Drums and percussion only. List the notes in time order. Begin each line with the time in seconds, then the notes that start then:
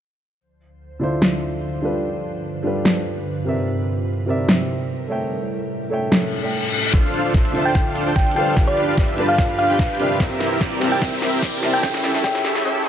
1.22 snare
2.85 snare
4.49 snare
6.12 snare
6.94 kick, snare, closed hi-hat
7.14 closed hi-hat
7.34 kick, snare, closed hi-hat
7.45 closed hi-hat
7.55 closed hi-hat
7.75 kick, snare, closed hi-hat
7.95 closed hi-hat
8.16 kick, snare, closed hi-hat
8.27 closed hi-hat
8.31 closed hi-hat
8.36 closed hi-hat
8.57 kick, snare, closed hi-hat
8.77 closed hi-hat
8.97 kick, snare, closed hi-hat
9.08 closed hi-hat
9.18 closed hi-hat
9.38 kick, snare, closed hi-hat
9.59 closed hi-hat
9.79 kick, snare, closed hi-hat
9.90 closed hi-hat
9.95 closed hi-hat
10.00 closed hi-hat
10.20 kick, snare, closed hi-hat
10.40 snare, closed hi-hat
10.61 kick, snare, closed hi-hat
10.72 closed hi-hat
10.81 snare, closed hi-hat
11.02 kick, snare, closed hi-hat
11.22 snare, closed hi-hat
11.42 kick, snare, closed hi-hat
11.53 closed hi-hat
11.58 closed hi-hat
11.63 snare, closed hi-hat
11.83 kick, snare, closed hi-hat
11.94 snare
12.04 snare, closed hi-hat
12.14 snare
12.24 kick, snare, closed hi-hat
12.35 snare, closed hi-hat
12.45 snare, closed hi-hat
12.55 snare